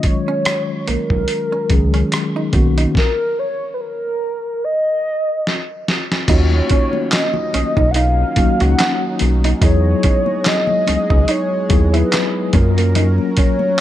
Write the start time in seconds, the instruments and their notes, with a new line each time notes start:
Already playing: tine electric piano D#3 F#3 G#3 C#4 F4
0.03 soft synth lead C#5, muted hollow-body jazz guitar stroke, kick, closed hi-hat
0.28 hollow-body jazz guitar C#4
0.45 cross-stick, closed hi-hat
0.88 analog synth bass B1, hollow-body jazz guitar A#3, soft synth lead A#4, closed hi-hat
1.10 analog synth bass B1, kick
1.28 closed hi-hat
1.52 hollow-body jazz guitar C#4
1.69 analog synth bass C#2, tine electric piano D#3 F#3 G#3 C#4 G#4, muted hollow-body jazz guitar stroke, kick, closed hi-hat
1.94 hollow-body jazz guitar C#4, closed hi-hat
2.12 cross-stick, closed hi-hat
2.36 hollow-body jazz guitar D#4
2.52 analog synth bass B1, tine electric piano D#3 A#3 B3 C#4 F#4, muted hollow-body jazz guitar stroke, kick, closed hi-hat
2.78 hollow-body jazz guitar D#4, closed hi-hat
2.95 soft synth lead A#4, kick, snare
3.39 soft synth lead C#5
3.74 soft synth lead B4
3.81 soft synth lead A#4
4.64 soft synth lead D#5
5.47 snare
5.88 snare
6.12 snare
6.28 analog synth bass D#2, analog synth pad D#3 F#3 C#4 D#4, tine electric piano A#3 C#4 D#4 F4 F#4, hollow-body jazz guitar D#4, soft synth lead C#5, kick, closed hi-hat, crash, muted conga, low conga
6.52 muted conga, high conga
6.70 hollow-body jazz guitar C#4, kick, closed hi-hat
6.93 high conga
7.11 soft synth lead D#5, muted hollow-body jazz guitar stroke, snare, clap, closed hi-hat, muted conga
7.34 muted conga, high conga, low conga
7.53 analog synth bass B1, hollow-body jazz guitar C#4, closed hi-hat, high conga
7.77 analog synth bass B1, hollow-body jazz guitar D#4, kick
7.91 soft synth lead F#5, closed hi-hat
7.96 hollow-body jazz guitar D#4, soft synth lead F5
8.36 analog synth bass C#2, tine electric piano F#3 A#3 C#4 D#4 F#4, muted hollow-body jazz guitar stroke, kick, closed hi-hat, high conga
8.60 analog synth bass C#2, hollow-body jazz guitar F#4, soft synth lead F#5, closed hi-hat
8.79 hollow-body jazz guitar F#4, snare, clap, closed hi-hat
9.19 analog synth bass B1, muted hollow-body jazz guitar stroke, closed hi-hat, high conga, low conga
9.44 hollow-body jazz guitar D#4, closed hi-hat
9.61 analog synth bass E2, tine electric piano F#3 B3 D#4 E4 G#4, analog synth pad G#3 G#4 D#5, hollow-body jazz guitar D#4, soft synth lead C#5, kick, closed hi-hat, low conga
9.85 high conga
10.03 hollow-body jazz guitar C#4, kick, closed hi-hat
10.26 high conga
10.44 soft synth lead D#5, muted hollow-body jazz guitar stroke, snare, clap, closed hi-hat, muted conga
10.67 muted conga, high conga, low conga
10.87 analog synth bass C#2, hollow-body jazz guitar C#4, closed hi-hat, high conga
11.10 analog synth bass C#2, hollow-body jazz guitar D#4, kick
11.28 hollow-body jazz guitar D#4, soft synth lead C#5, closed hi-hat
11.69 analog synth bass D#2, tine electric piano F#3 B3 D#4 E4 G#4, muted hollow-body jazz guitar stroke, kick, closed hi-hat, high conga
11.94 hollow-body jazz guitar E4, soft synth lead B4, closed hi-hat
12.11 muted hollow-body jazz guitar stroke, snare, clap, closed hi-hat, muted conga
12.53 analog synth bass F#2, tine electric piano F#3 A#3 C#4 F4 A#4, analog synth pad F#3 C#4 A#4, hollow-body jazz guitar C#4, kick, closed hi-hat, high conga, low conga
12.78 hollow-body jazz guitar A#3, closed hi-hat
12.95 hollow-body jazz guitar D#4, closed hi-hat, muted conga, low conga
13.18 muted conga, high conga
13.37 hollow-body jazz guitar C#4, soft synth lead C#5, kick, closed hi-hat
13.59 high conga